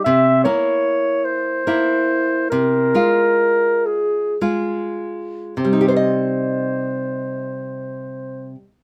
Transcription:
0.04 0.45 C3 soft
0.04 0.43 E5 medium
0.44 1.62 A#3 soft
0.44 1.63 E4 soft
0.44 1.26 C#5 medium
1.25 2.49 C5 medium
1.67 2.47 A#3 soft
1.67 2.47 E4 soft
2.50 2.94 C3 soft
2.50 3.88 A#4 medium
2.95 4.37 G#3 soft
2.95 4.37 F4 soft
3.86 4.40 G#4 medium
4.41 5.54 G#3 soft
4.41 5.54 F4 soft
5.56 8.55 C3 soft
5.56 8.54 C5 soft
5.65 8.63 G3 soft
5.73 8.71 D#4 soft
5.81 5.88 G4 soft
5.88 5.96 C5 soft
5.96 8.83 D#5 soft

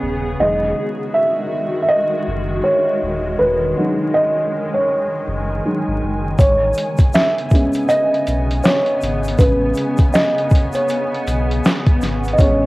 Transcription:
0.00 0.35 D#1 medium
0.00 0.34 C#3 medium
0.00 0.40 G#3 medium
0.00 0.34 B3 medium
0.00 0.41 B3 soft
0.00 0.41 C#4 medium
0.00 0.34 G#4 medium
0.00 0.40 C#5 medium
0.00 0.40 D#5 medium
0.39 0.73 E1 loud
0.39 6.35 D#3 medium
0.39 1.48 D#3 medium
0.39 1.48 F#3 soft
0.39 6.35 G#3 medium
0.39 1.48 G#3 soft
0.39 3.36 F#4 medium
0.39 1.17 D#5 medium
1.14 1.79 E5 loud
1.82 1.88 E5 medium
1.88 2.66 D#5 loud
2.27 2.61 F#1 medium
2.64 3.41 C#5 medium
3.02 3.36 D#1 medium
3.38 3.73 E1 loud
3.38 4.10 B4 medium
3.38 12.66 G#5 medium
3.77 4.30 F#3 medium
3.77 4.30 G#3 soft
3.77 4.30 D#4 medium
4.14 4.70 D#5 medium
4.74 5.97 C#5 medium
5.27 5.61 F#1 medium
5.65 5.98 F#3 soft
5.65 5.98 G#3 soft
5.65 5.99 D#4 soft
5.87 6.00 G#1 medium
6.02 6.36 F#1 medium
6.38 6.73 A1 loud
6.38 12.66 C#3 medium
6.38 12.66 B3 medium
6.38 7.16 C#5 medium
6.38 kick loud
6.38 closed hi-hat medium
6.38 shaker medium
6.74 shaker soft
6.78 closed hi-hat medium
6.98 kick medium
6.98 closed hi-hat soft
6.98 shaker medium
7.13 7.91 E5 loud
7.13 snare loud
7.13 closed hi-hat medium
7.13 shaker medium
7.38 closed hi-hat soft
7.50 8.61 G#3 medium
7.50 8.61 B3 medium
7.50 8.61 C#4 medium
7.50 kick loud
7.50 shaker soft
7.55 closed hi-hat medium
7.73 closed hi-hat medium
7.73 shaker soft
7.89 8.60 D#5 loud
7.89 closed hi-hat medium
7.89 shaker medium
8.14 closed hi-hat soft
8.27 8.61 B1 medium
8.27 closed hi-hat medium
8.27 shaker soft
8.51 closed hi-hat soft
8.64 9.41 C#5 medium
8.64 snare loud
8.64 closed hi-hat medium
8.64 shaker medium
8.86 closed hi-hat soft
9.01 9.36 G#1 medium
9.01 closed hi-hat medium
9.01 shaker soft
9.24 shaker soft
9.28 closed hi-hat medium
9.38 9.73 A1 loud
9.38 9.73 G#3 soft
9.38 9.73 B3 soft
9.38 9.73 C#4 medium
9.38 10.16 B4 medium
9.38 kick loud
9.38 closed hi-hat medium
9.38 shaker medium
9.74 closed hi-hat medium
9.74 shaker soft
9.97 kick medium
9.97 closed hi-hat soft
9.97 shaker soft
10.14 10.76 D#5 loud
10.14 snare loud
10.14 closed hi-hat medium
10.14 shaker medium
10.38 closed hi-hat soft
10.50 kick loud
10.50 shaker soft
10.55 closed hi-hat medium
10.73 11.98 C#5 medium
10.73 closed hi-hat soft
10.73 shaker soft
10.89 closed hi-hat medium
10.89 shaker medium
11.14 closed hi-hat soft
11.27 11.61 B1 medium
11.27 closed hi-hat medium
11.27 shaker soft
11.51 closed hi-hat soft
11.64 snare loud
11.64 closed hi-hat medium
11.64 shaker medium
11.86 kick medium
11.86 closed hi-hat soft
12.02 12.35 G#1 medium
12.02 snare soft
12.02 closed hi-hat medium
12.02 shaker soft
12.24 shaker soft
12.28 closed hi-hat soft
12.33 12.39 D#5 medium
12.38 12.66 A1 loud
12.38 12.66 G#3 medium
12.38 12.66 B3 soft
12.38 12.66 C#4 medium
12.38 12.66 C#5 medium
12.38 kick loud
12.38 closed hi-hat medium
12.38 shaker medium

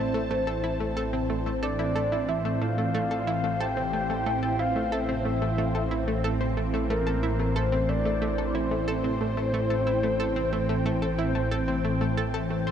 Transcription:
0.00 2.58 A1 medium
0.00 12.71 A2 medium
0.00 12.71 E3 medium
0.00 12.71 C4 medium
0.00 1.26 C5 medium
0.00 12.71 C5 medium
0.00 3.10 A5 medium
0.14 0.26 A3 medium
0.31 0.42 A3 medium
0.47 0.54 A4 medium
0.64 0.71 E4 medium
0.80 0.92 A3 medium
0.97 1.08 A4 loud
1.13 1.20 C4 medium
1.30 1.37 A3 medium
1.46 1.58 A3 medium
1.63 1.74 A4 medium
1.63 2.30 D5 medium
1.79 1.91 E4 medium
1.96 2.07 A4 loud
2.12 2.24 E4 medium
2.29 2.36 E4 medium
2.29 2.63 E5 medium
2.45 2.60 A3 medium
2.61 12.71 A1 medium
2.61 2.69 A3 medium
2.61 3.62 F5 loud
2.78 2.90 A3 medium
2.94 3.06 A3 loud
3.11 3.18 A4 medium
3.27 3.34 E4 medium
3.44 3.56 A3 medium
3.60 3.72 A4 medium
3.60 4.61 G5 loud
3.77 3.84 C4 medium
3.93 4.00 A3 medium
4.10 4.22 A3 medium
4.26 4.38 A3 loud
4.43 4.50 A4 medium
4.59 4.66 E4 medium
4.59 4.94 F5 loud
4.76 4.88 A3 medium
4.92 5.04 A4 medium
4.92 5.25 E5 medium
5.09 5.16 C4 medium
5.25 5.32 A3 medium
5.25 6.53 E5 medium
5.42 5.54 A3 medium
5.58 5.70 A3 loud
5.75 5.82 A4 medium
5.91 5.98 E4 medium
6.08 6.19 A3 medium
6.24 6.36 A4 loud
6.41 6.48 C4 medium
6.57 6.64 A3 medium
6.74 6.85 A3 medium
6.90 7.02 A3 loud
6.90 7.58 A#4 loud
7.07 7.14 A4 medium
7.23 7.30 E4 medium
7.40 7.51 A3 medium
7.56 7.68 A4 loud
7.56 7.91 C5 loud
7.72 7.79 C4 medium
7.89 7.96 A3 medium
7.89 8.56 D5 loud
8.05 8.17 A3 medium
8.22 8.34 A3 medium
8.34 12.71 G5 medium
8.38 8.45 A4 medium
8.55 8.62 E4 medium
8.55 8.87 C5 loud
8.71 8.83 A3 medium
8.88 9.00 A4 loud
8.88 12.46 C5 loud
9.04 9.11 C4 medium
9.21 9.28 A3 medium
9.37 9.49 A3 medium
9.54 9.66 A3 loud
9.70 9.77 A4 medium
9.87 9.94 E4 medium
10.03 10.15 A3 medium
10.20 10.32 A4 medium
10.36 10.43 C4 medium
10.53 10.60 A3 medium
10.69 10.81 A3 medium
10.86 10.97 A3 loud
11.02 11.09 A4 medium
11.19 11.26 E4 medium
11.35 11.47 A3 medium
11.51 11.63 A4 medium
11.68 11.75 C4 medium
11.84 11.92 A3 medium
12.01 12.13 A3 medium
12.17 12.25 A4 loud
12.34 12.50 A4 loud
12.50 12.62 A3 medium
12.67 12.71 C5 medium

